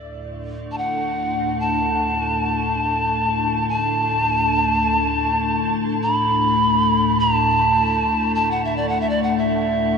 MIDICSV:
0, 0, Header, 1, 3, 480
1, 0, Start_track
1, 0, Key_signature, 2, "major"
1, 0, Tempo, 500000
1, 9579, End_track
2, 0, Start_track
2, 0, Title_t, "Pan flute"
2, 0, Program_c, 0, 75
2, 689, Note_on_c, 0, 81, 55
2, 748, Note_on_c, 0, 78, 73
2, 763, Note_off_c, 0, 81, 0
2, 1537, Note_on_c, 0, 81, 70
2, 1551, Note_off_c, 0, 78, 0
2, 3536, Note_off_c, 0, 81, 0
2, 3542, Note_on_c, 0, 81, 92
2, 5501, Note_off_c, 0, 81, 0
2, 5789, Note_on_c, 0, 83, 91
2, 6908, Note_on_c, 0, 81, 90
2, 6922, Note_off_c, 0, 83, 0
2, 8010, Note_off_c, 0, 81, 0
2, 8016, Note_on_c, 0, 81, 78
2, 8171, Note_on_c, 0, 78, 72
2, 8185, Note_off_c, 0, 81, 0
2, 8301, Note_on_c, 0, 76, 67
2, 8315, Note_off_c, 0, 78, 0
2, 8415, Note_on_c, 0, 74, 68
2, 8429, Note_off_c, 0, 76, 0
2, 8534, Note_on_c, 0, 78, 73
2, 8548, Note_off_c, 0, 74, 0
2, 8648, Note_on_c, 0, 76, 76
2, 8662, Note_off_c, 0, 78, 0
2, 8732, Note_on_c, 0, 74, 72
2, 8746, Note_off_c, 0, 76, 0
2, 8861, Note_on_c, 0, 78, 67
2, 8875, Note_off_c, 0, 74, 0
2, 9005, Note_on_c, 0, 76, 71
2, 9019, Note_off_c, 0, 78, 0
2, 9579, Note_off_c, 0, 76, 0
2, 9579, End_track
3, 0, Start_track
3, 0, Title_t, "Ambient pad"
3, 0, Program_c, 1, 92
3, 0, Note_on_c, 1, 38, 67
3, 0, Note_on_c, 1, 45, 66
3, 9579, Note_off_c, 1, 38, 0
3, 9579, Note_off_c, 1, 45, 0
3, 9579, End_track
0, 0, End_of_file